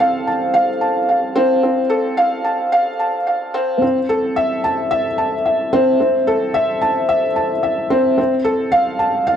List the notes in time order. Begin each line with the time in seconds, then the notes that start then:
Already playing: A4
0.00 F5
0.27 A5
0.54 F5
0.81 A5
1.09 F5
1.35 C4
1.63 C4
1.90 A4
2.17 F5
2.44 A5
2.72 F5
2.99 A5
3.27 F5
3.54 C4
3.82 C4
4.09 A4
4.36 E5
4.64 A5
4.91 E5
5.18 A5
5.46 E5
5.73 C4
6.00 C4
6.27 A4
6.54 E5
6.82 A5
7.09 E5
7.36 A5
7.63 E5
7.90 C4
8.18 C4
8.44 A4
8.72 F5
8.99 A5
9.27 F5